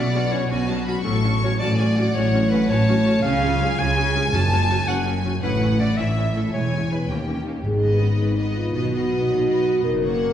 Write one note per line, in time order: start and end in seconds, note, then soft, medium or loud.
0.00 0.44 B1 medium
0.00 0.45 B2 medium
0.00 1.07 B2 medium
0.00 0.68 F#3 soft
0.00 0.32 B3 soft
0.00 0.13 D4 soft
0.00 0.32 D5 medium
0.00 0.34 D5 medium
0.00 0.50 F#5 medium
0.14 0.21 C#4 soft
0.14 0.50 D4 soft
0.14 0.21 F#4 soft
0.31 0.87 B3 soft
0.31 0.39 C#4 soft
0.31 0.38 F#4 soft
0.31 0.52 C#5 medium
0.31 0.51 C#5 medium
0.49 0.98 B1 medium
0.49 0.99 B2 medium
0.49 0.57 C#4 medium
0.49 1.07 D4 soft
0.49 1.04 F#4 medium
0.49 0.58 F#4 medium
0.49 1.04 F#4 medium
0.49 0.68 G#5 medium
0.67 1.78 F#3 soft
0.67 0.75 C#4 soft
0.67 0.75 F#4 soft
0.67 0.87 A5 medium
0.86 1.07 B3 soft
0.86 0.94 C#4 medium
0.86 0.94 F#4 soft
0.86 1.05 B5 medium
1.02 1.53 A1 medium
1.02 1.54 A2 medium
1.02 2.14 A2 medium
1.02 1.11 C#4 medium
1.02 1.12 F#4 medium
1.02 1.41 A4 medium
1.02 1.42 A4 medium
1.02 1.57 C#6 medium
1.24 1.31 C#4 soft
1.24 1.31 F#4 soft
1.42 1.95 A3 soft
1.42 1.50 C#4 soft
1.42 1.50 F#4 medium
1.42 1.49 C#5 medium
1.42 1.59 C#5 medium
1.59 2.08 A1 medium
1.59 2.09 A2 medium
1.59 1.68 C#4 medium
1.59 1.68 F#4 medium
1.59 2.13 D5 medium
1.59 1.78 A5 medium
1.76 2.87 F#3 soft
1.76 1.85 C#4 medium
1.76 1.85 F#4 medium
1.76 1.95 G#5 medium
1.96 2.50 A3 soft
1.96 2.04 C#4 medium
1.96 2.04 F#4 medium
1.96 2.70 F#5 medium
2.14 2.63 A1 medium
2.14 2.63 A2 medium
2.14 3.25 A2 medium
2.14 2.23 C#4 medium
2.14 2.23 F#4 medium
2.14 2.50 C#5 medium
2.14 2.52 C#5 medium
2.33 2.40 C#4 medium
2.33 2.68 C#4 medium
2.33 2.41 F#4 medium
2.51 3.04 A3 soft
2.51 2.59 C#4 medium
2.51 2.59 F#4 medium
2.51 2.69 B4 medium
2.51 2.70 B4 medium
2.69 3.17 A1 medium
2.69 3.18 A2 medium
2.69 3.95 C#4 soft
2.69 2.78 C#4 medium
2.69 2.77 F#4 medium
2.69 3.23 C#5 medium
2.69 3.22 C#5 loud
2.69 3.24 A5 medium
2.88 3.25 F#3 medium
2.88 2.95 C#4 medium
2.88 2.95 F#4 medium
3.06 3.25 A3 soft
3.06 3.13 C#4 medium
3.06 3.13 F#4 medium
3.21 3.72 C#2 medium
3.21 3.72 C#3 medium
3.21 4.35 C#3 medium
3.21 3.31 C#4 medium
3.21 3.31 G#4 medium
3.21 3.77 F5 medium
3.21 3.80 F5 loud
3.21 5.38 G#5 medium
3.42 3.49 C#4 medium
3.42 3.78 F4 medium
3.42 3.50 G#4 medium
3.61 4.13 G#3 soft
3.61 3.68 C#4 medium
3.61 3.68 G#4 medium
3.78 4.26 C#2 medium
3.78 4.27 C#3 medium
3.78 3.86 C#4 medium
3.78 4.35 F4 medium
3.78 3.86 G#4 medium
3.78 4.33 G#5 medium
3.78 4.35 G#5 loud
3.97 4.50 C#4 medium
3.97 4.04 C#4 medium
3.97 4.04 G#4 medium
4.15 4.34 G#3 soft
4.15 4.22 C#4 medium
4.15 4.22 G#4 medium
4.32 4.81 F#1 medium
4.32 5.44 F#2 medium
4.32 4.81 F#2 medium
4.32 4.84 F#2 medium
4.32 4.40 C#4 medium
4.32 4.40 F#4 medium
4.32 4.87 A5 medium
4.32 4.89 A5 loud
4.51 4.87 C#4 medium
4.51 4.59 C#4 medium
4.51 4.58 F#4 medium
4.69 5.23 C#3 soft
4.69 4.77 C#4 medium
4.69 4.77 F#4 medium
4.87 5.36 F#1 medium
4.87 5.36 F#2 medium
4.87 4.95 C#4 medium
4.87 5.60 C#4 medium
4.87 4.95 F#4 medium
4.87 4.95 F#5 medium
4.87 5.06 F#5 medium
5.06 6.16 A3 soft
5.06 5.13 C#4 soft
5.06 5.13 F#4 soft
5.24 5.44 C#3 soft
5.24 5.32 C#4 medium
5.24 5.32 F#4 medium
5.41 5.91 A1 medium
5.41 5.91 A2 medium
5.41 6.55 A2 medium
5.41 5.50 C#4 medium
5.41 5.50 E4 medium
5.41 5.76 B4 medium
5.41 5.77 B4 medium
5.41 5.97 F#5 medium
5.61 5.68 C#4 medium
5.61 5.97 C#4 soft
5.61 5.68 E4 soft
5.79 6.34 E3 soft
5.79 5.87 C#4 medium
5.79 5.86 E4 soft
5.79 5.99 D5 medium
5.79 5.98 D5 medium
5.97 6.47 A1 medium
5.97 6.47 A2 medium
5.97 6.55 C#4 soft
5.97 6.05 C#4 soft
5.97 6.06 E4 medium
5.97 6.34 E5 medium
5.97 6.54 E5 medium
6.17 6.55 A3 soft
6.17 6.25 C#4 soft
6.17 6.25 E4 soft
6.35 6.52 E3 soft
6.35 6.43 C#4 soft
6.35 6.43 E4 soft
6.35 6.53 A4 medium
6.35 6.54 A4 soft
6.53 7.03 E1 medium
6.53 7.03 E2 medium
6.53 7.11 E3 soft
6.53 6.62 G#3 soft
6.53 6.61 E4 soft
6.53 6.90 C#5 medium
6.53 6.94 C#5 medium
6.53 7.09 G#5 medium
6.72 6.81 G#3 soft
6.72 6.89 B3 soft
6.72 6.81 E4 soft
6.90 6.99 G#3 soft
6.90 7.11 B3 soft
6.90 6.99 E4 soft
6.90 7.11 B4 soft
6.90 7.10 B4 soft
6.90 7.12 B4 medium
7.09 7.58 D#2 soft
7.09 7.59 D#2 soft
7.09 7.67 D#3 soft
7.09 7.18 A#3 soft
7.09 7.17 C#4 soft
7.09 7.66 G4 soft
7.09 7.37 G5 soft
7.28 7.35 A#3 soft
7.28 7.36 C#4 soft
7.28 7.45 D#4 soft
7.46 7.54 A#3 soft
7.46 7.54 C#4 soft
7.46 7.91 D#4 soft
7.46 7.67 C#5 soft
7.64 8.13 G#1 soft
7.64 8.16 G#2 soft
7.64 8.77 G#2 soft
7.64 8.14 G#2 medium
7.64 7.99 G#4 medium
7.74 8.77 D#3 soft
7.81 8.64 B3 soft
7.81 8.38 B3 soft
7.81 8.36 B4 soft
7.81 8.36 D#5 soft
7.92 8.10 D#4 soft
8.00 8.20 C#4 medium
8.00 8.46 B4 soft
8.11 8.55 D#4 soft
8.19 8.69 G#1 soft
8.19 8.69 G#2 medium
8.19 8.57 D#4 soft
8.19 8.37 D#5 soft
8.29 9.38 B5 soft
8.37 8.75 B3 soft
8.37 8.73 B4 soft
8.37 8.73 D#5 soft
8.37 9.29 D#5 soft
8.48 9.10 B4 soft
8.55 9.01 D#4 soft
8.55 8.75 F4 medium
8.65 8.92 B3 soft
8.74 9.23 B1 medium
8.74 9.86 B2 soft
8.74 9.23 B2 medium
8.74 8.92 B3 soft
8.74 9.84 F#4 medium
8.74 8.92 B4 soft
8.74 8.91 D#5 soft
8.84 10.33 F#3 soft
8.92 9.75 B3 soft
8.92 9.47 B3 soft
8.92 9.47 B4 soft
8.92 9.47 D#5 soft
9.02 9.20 D#4 soft
9.11 9.57 B4 soft
9.21 9.66 D#4 soft
9.29 9.78 B1 soft
9.29 9.78 B2 medium
9.29 9.47 D#5 soft
9.39 9.87 B5 soft
9.48 9.84 B3 soft
9.48 9.85 B4 soft
9.48 9.86 D#5 soft
9.48 9.85 D#5 soft
9.58 9.87 B4 soft
9.67 9.87 D#4 soft
9.76 9.87 B3 soft
9.84 10.33 F#1 medium
9.84 10.33 F#2 soft
9.84 10.33 F#2 medium
9.84 10.33 A#4 medium
9.94 10.33 C#3 soft
10.02 10.33 A#3 soft
10.02 10.33 C#4 soft
10.02 10.33 C#5 soft
10.02 10.33 F#5 soft
10.13 10.33 F#4 soft
10.23 10.33 A#4 soft